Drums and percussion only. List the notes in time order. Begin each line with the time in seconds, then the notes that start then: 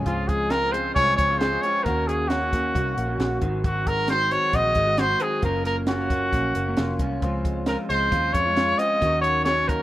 0.06 kick, closed hi-hat
0.29 kick, closed hi-hat
0.50 snare, closed hi-hat
0.74 closed hi-hat
0.96 kick, closed hi-hat
1.19 kick, closed hi-hat
1.41 snare, closed hi-hat
1.63 closed hi-hat
1.86 kick, closed hi-hat
2.09 closed hi-hat
2.30 snare, closed hi-hat
2.53 kick, closed hi-hat
2.75 kick, closed hi-hat
2.98 closed hi-hat
3.20 snare, closed hi-hat
3.42 kick, closed hi-hat
3.64 kick, closed hi-hat
3.87 kick, closed hi-hat
4.08 snare, closed hi-hat
4.31 closed hi-hat
4.53 kick, closed hi-hat
4.75 kick, closed hi-hat
4.97 snare, closed hi-hat
5.20 closed hi-hat
5.42 kick, closed hi-hat
5.65 closed hi-hat
5.87 snare, closed hi-hat
6.10 kick, closed hi-hat
6.33 kick, closed hi-hat
6.55 closed hi-hat
6.77 snare, closed hi-hat
6.99 kick, closed hi-hat
7.22 kick, closed hi-hat
7.45 kick, closed hi-hat
7.66 snare, closed hi-hat
7.90 closed hi-hat
8.12 kick, closed hi-hat
8.34 kick, closed hi-hat
8.57 snare, closed hi-hat
8.79 closed hi-hat
9.02 kick, closed hi-hat
9.24 closed hi-hat
9.46 snare, closed hi-hat
9.69 kick, closed hi-hat